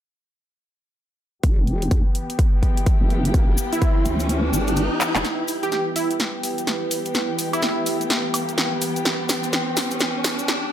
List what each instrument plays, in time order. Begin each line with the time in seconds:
1.43 wobble bass E1, string section E3 B3 G4, ambient pad E4, kick, closed hi-hat, riser
1.67 closed hi-hat
1.73 ambient pad G4
1.82 closed hi-hat
1.91 wobble bass E2, kick, closed hi-hat
2.04 ambient pad B4
2.15 closed hi-hat
2.30 ambient pad G5, closed hi-hat
2.39 kick, closed hi-hat
2.63 kick, closed hi-hat
2.77 closed hi-hat
2.86 kick, closed hi-hat
3.01 wobble bass F#1
3.10 closed hi-hat
3.25 closed hi-hat
3.34 wobble bass E1, kick, closed hi-hat, cabasa
3.58 closed hi-hat, cabasa
3.73 digital synth lead E4, closed hi-hat, cabasa
3.82 kick, closed hi-hat, cabasa
4.05 wobble bass D2, closed hi-hat, cabasa
4.20 closed hi-hat, cabasa
4.29 closed hi-hat, cabasa
4.53 wobble bass G1, closed hi-hat, cabasa
4.67 closed hi-hat, cabasa
4.76 closed hi-hat, cabasa
5.01 clap, closed hi-hat, cabasa
5.15 wobble bass E1, clap, closed hi-hat, cabasa
5.24 string section E3 B3 G4, snare, closed hi-hat, riser, cabasa
5.48 open hi-hat, cabasa
5.63 digital synth lead G4, closed hi-hat, cabasa
5.72 digital synth lead G4, snare, closed hi-hat, cabasa
5.96 digital synth lead E4, open hi-hat, cabasa
6.11 closed hi-hat, cabasa
6.20 snare, closed hi-hat, cabasa
6.43 open hi-hat, cabasa
6.58 closed hi-hat, cabasa
6.67 snare, closed hi-hat, cabasa
6.91 open hi-hat, cabasa
7.05 closed hi-hat, cabasa
7.14 snare, closed hi-hat, cabasa
7.39 open hi-hat, cabasa
7.53 digital synth lead E4, closed hi-hat, cabasa, high woodblock
7.62 snare, open hi-hat, cabasa
7.86 open hi-hat, cabasa
8.01 closed hi-hat, cabasa
8.10 snare, closed hi-hat, cabasa
8.34 open hi-hat, cabasa, high woodblock
8.49 closed hi-hat, cabasa
8.58 snare, closed hi-hat, cabasa
8.82 open hi-hat, cabasa
8.96 closed hi-hat, cabasa
9.05 snare, closed hi-hat, cabasa
9.29 snare, open hi-hat, cabasa
9.43 closed hi-hat, cabasa
9.53 snare, closed hi-hat, cabasa
9.77 snare, open hi-hat, cabasa
9.91 closed hi-hat, cabasa
9.99 snare, closed hi-hat, cabasa
10.24 snare, open hi-hat, cabasa
10.39 closed hi-hat, cabasa
10.48 snare, closed hi-hat, cabasa